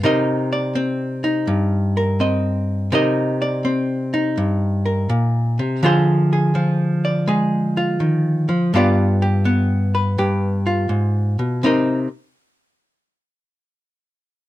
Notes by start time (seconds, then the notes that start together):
0.03 C3 D#4 A#4 D#5
0.53 D5
0.75 C4
1.24 D#4
1.47 G2
1.97 A#4
2.20 C4 D#5
2.92 C3 D#4 A#4 D#5
3.42 D5
3.65 C4
4.14 D#4
4.37 G2
4.86 A#4
5.09 A#2
5.59 C3
5.83 D3 F3 F4 G#4 C5
6.33 G#4
6.55 F3
7.05 D5
7.28 G#3 G#4
7.77 F4
8.00 D#3
8.49 F3
8.74 G2 B3 F4 G4 D5
9.22 G4
9.45 B3
9.95 B4
10.18 G2 G4
10.66 F4
10.89 G#2
11.39 B2
11.63 C3 C4 D#4 A#4 D#5